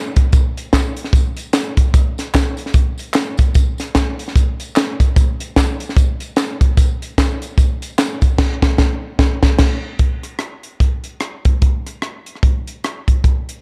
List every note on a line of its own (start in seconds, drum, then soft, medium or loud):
0.16 kick loud
0.16 closed hi-hat medium
0.16 tambourine medium
0.33 kick loud
0.33 closed hi-hat medium
0.33 tambourine medium
0.57 closed hi-hat medium
0.57 tambourine soft
0.73 kick medium
0.73 snare loud
0.73 clap loud
0.73 closed hi-hat medium
0.73 tambourine medium
0.97 closed hi-hat medium
0.97 tambourine medium
1.04 snare soft
1.13 kick loud
1.13 closed hi-hat medium
1.13 tambourine medium
1.37 closed hi-hat medium
1.37 tambourine medium
1.53 snare loud
1.53 clap loud
1.53 closed hi-hat medium
1.53 tambourine loud
1.77 kick medium
1.77 closed hi-hat medium
1.77 tambourine medium
1.94 kick loud
1.94 closed hi-hat medium
1.94 tambourine medium
2.18 snare soft
2.18 closed hi-hat medium
2.18 tambourine medium
2.34 kick medium
2.34 snare loud
2.34 clap medium
2.34 closed hi-hat medium
2.34 tambourine medium
2.57 closed hi-hat medium
2.57 tambourine medium
2.66 snare soft
2.74 kick loud
2.74 closed hi-hat medium
2.74 tambourine medium
2.98 closed hi-hat medium
2.98 tambourine medium
3.14 snare loud
3.14 clap loud
3.14 closed hi-hat medium
3.14 tambourine loud
3.37 kick loud
3.37 closed hi-hat medium
3.37 tambourine medium
3.54 kick loud
3.54 closed hi-hat medium
3.54 tambourine medium
3.78 snare soft
3.78 closed hi-hat medium
3.78 tambourine medium
3.95 kick medium
3.95 snare loud
3.95 clap loud
3.95 closed hi-hat medium
3.95 tambourine medium
4.19 closed hi-hat medium
4.19 tambourine soft
4.28 snare soft
4.36 kick loud
4.36 closed hi-hat medium
4.36 tambourine medium
4.60 closed hi-hat medium
4.60 tambourine medium
4.76 snare loud
4.76 clap loud
4.76 closed hi-hat medium
4.76 tambourine loud
5.00 kick medium
5.00 closed hi-hat medium
5.00 tambourine medium
5.16 kick loud
5.16 closed hi-hat medium
5.16 tambourine medium
5.40 closed hi-hat medium
5.40 tambourine soft
5.56 kick medium
5.56 snare loud
5.56 clap medium
5.56 closed hi-hat medium
5.56 tambourine medium
5.80 closed hi-hat medium
5.80 tambourine medium
5.89 snare soft
5.97 kick loud
5.97 closed hi-hat medium
5.97 tambourine medium
6.20 closed hi-hat medium
6.20 tambourine medium
6.36 snare loud
6.36 clap loud
6.36 closed hi-hat loud
6.36 tambourine loud
6.61 kick loud
6.61 closed hi-hat medium
6.61 tambourine medium
6.77 kick loud
6.77 closed hi-hat medium
6.77 tambourine medium
7.02 closed hi-hat medium
7.02 tambourine soft
7.18 kick loud
7.18 snare loud
7.18 clap medium
7.18 closed hi-hat medium
7.18 tambourine medium
7.42 closed hi-hat medium
7.42 tambourine medium
7.58 kick loud
7.58 closed hi-hat medium
7.58 tambourine medium
7.82 closed hi-hat medium
7.82 tambourine medium
7.98 snare loud
7.98 clap loud
7.98 closed hi-hat loud
7.98 tambourine loud
8.21 kick medium
8.21 closed hi-hat medium
8.21 tambourine medium
8.38 kick loud
8.38 snare loud
8.38 crash medium
8.62 kick loud
8.62 snare loud
8.78 kick loud
8.78 snare loud
9.19 kick loud
9.19 snare loud
9.43 kick loud
9.43 snare loud
9.59 kick loud
9.59 snare loud
9.59 crash medium
9.99 kick loud
9.99 closed hi-hat medium
10.23 cross-stick soft
10.23 closed hi-hat medium
10.39 cross-stick medium
10.39 closed hi-hat medium
10.63 closed hi-hat medium
10.80 kick medium
10.80 closed hi-hat medium
11.04 closed hi-hat medium
11.20 cross-stick medium
11.20 closed hi-hat medium
11.45 kick medium
11.45 closed hi-hat medium
11.62 kick loud
11.62 closed hi-hat medium
11.86 cross-stick soft
11.86 closed hi-hat medium
12.02 cross-stick medium
12.02 closed hi-hat medium
12.26 closed hi-hat medium
12.35 cross-stick soft
12.43 kick medium
12.43 closed hi-hat medium
12.67 closed hi-hat medium
12.84 cross-stick medium
12.84 closed hi-hat medium
13.08 kick medium
13.08 closed hi-hat medium
13.24 kick loud
13.24 closed hi-hat medium
13.49 closed hi-hat medium